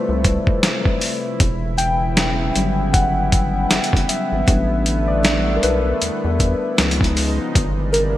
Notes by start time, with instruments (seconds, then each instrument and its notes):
Already playing: analog synth pad C3 F3 A3 E4, synth keys B4 C5 D5
0.09 analog synth bass C2
0.24 kick, closed hi-hat
0.47 kick
0.63 snare, closed hi-hat
0.85 kick
1.01 open hi-hat
1.40 analog synth bass E1, analog synth pad C#3 E3 B3, kick, closed hi-hat
1.78 synth keys G5, closed hi-hat
2.17 snare, closed hi-hat
2.55 analog synth bass G1, synth keys F#3 G3 C#4, closed hi-hat
2.93 synth keys F#5, kick, closed hi-hat
3.32 kick, closed hi-hat
3.71 analog synth bass F#1, snare, closed hi-hat
3.84 closed hi-hat
3.93 analog synth bass F#1, kick, closed hi-hat
4.09 synth keys E5, closed hi-hat
4.32 analog synth bass G#1
4.47 analog synth bass A1, analog synth pad D3 A3, synth keys G3 B3 D4, kick, closed hi-hat
4.86 closed hi-hat
5.07 synth keys D5
5.25 snare, closed hi-hat
5.56 synth keys A#4
5.63 analog synth bass B1, synth keys B4, closed hi-hat
6.02 analog synth bass E2, closed hi-hat
6.25 analog synth bass E2
6.40 kick, closed hi-hat
6.78 analog synth bass C#2, analog synth pad C#3 F3 G#3 D#4, synth keys F3 B3 D#4, snare, closed hi-hat
6.91 closed hi-hat
7.01 kick, closed hi-hat
7.17 open hi-hat
7.55 analog synth bass G1, analog synth pad C3 E3 G3 A#3 D4, kick, closed hi-hat
7.93 synth keys A#4, closed hi-hat